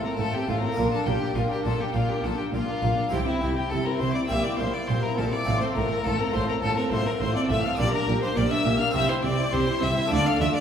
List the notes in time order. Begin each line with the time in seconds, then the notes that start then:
Already playing: A2 C4 F4 A4
0.04 C4 A4 A#4 A#5
0.18 A1 A2 A3 F4 A4 A5
0.34 C4 G4 A4 G5
0.48 A1 A2 A3 F4 F5
0.62 C4 A4 A#4 A#5
0.73 A#3 D4 F4
0.77 A#1 A#2 A#3 F4
0.92 D4 A4 A#4 A5
1.06 A#1 A#2 A#3 F4 G4 G5
1.21 D4 A#4
1.36 A#1 A#2 A#3 F4 F5
1.50 D4 G4 A#4 G5
1.63 A#1 A#2 A#3 F4 A4 A5
1.80 D4 G4 A#4 G5
1.94 A#1 A#2 A#3 F4 F5
2.09 D4 G4 A#4 G5
2.24 A#1 A#2 A#3 F4 A4 A5
2.38 D4 G4 A#4 G5
2.53 A#1 A#2 A#3 F4 F5
2.68 D4 A#4
2.82 A#1 A#2 A#3 F4
2.97 D4 A#4
3.09 C2 C3 C4 E4 G4 G5
3.14 G4
3.26 C4 E4 E5
3.41 C2 C3 E4 G4
3.56 C4 E4 G4 G5
3.70 C2 C3 E4 G4 A4 A5
3.85 C4 E4 A#4 A#5
3.98 C2 C3 E4 G4 C5 C6
4.14 C4 E4 D5 D6
4.28 A#1 A#2 A#3 C4 G4 E5 E6
4.43 C4 E4 D5 D6
4.58 A#1 A#2 A#3 G4 C5 C6
4.73 C4 E4 D5 D6
4.87 A#1 A#2 A#3 G4 C5 C6
5.03 C4 E4 A#4 A#5
5.17 A#1 A#2 A#3 G4 A4 A5
5.32 C4 E4 D5 D6
5.43 A1 A2 A3 C4 F4
5.47 A2
5.60 C4 A4 C5 C6
5.76 A1 A2 A3 F4 A#4 A#5
5.90 C4 A4
6.04 A1 A2 A3 F4 A4 A5
6.18 C4 A4 A#4 A#5
6.33 A1 A2 A3 F4 C5 C6
6.48 C4 A4 A#4 A#5
6.62 A1 A2 A3 F4 A4 A5
6.77 C4 A4 A#4 A#5
6.91 A1 A2 A3 F4 C5 C6
7.06 C4 A4 A#4 A#5
7.20 A1 A2 A3 F4 C5 C6
7.35 C4 A4 D5 D6
7.48 A1 A2 A3 F4 E5 E6
7.63 C4 A4 F5 F6
7.75 A#1 A#2 D4 G4 D6
7.79 A#3 D5
7.93 D4 A#4 A#5
8.07 A#1 A#2 A#3 G4
8.22 D4 A#4 C5 C6
8.36 A#1 A#2 A#3 G4 D5 D6
8.51 D4 A#4 E5 E6
8.65 A#1 A#2 A#3 G4
8.80 D4 A#4 F5 F6
8.90 C4 E4 G4
8.94 C2 C3 C4 G4 E5 E6
9.09 E4 C5 C6
9.23 C2 C3 C4 G4 D5 D6
9.39 E4 C5
9.52 C2 C3 C4 G4 C5 C6
9.66 E4 C5
9.81 C2 C3 C4 G4 E5 E6
9.96 E4 C5
10.06 A3 D4 F4
10.10 D2 D3 A3 F4 D5 D6
10.24 D4 A4 F5 F6
10.40 D2 D3 A3 F4 E5 E6
10.54 D4 A4 D5 D6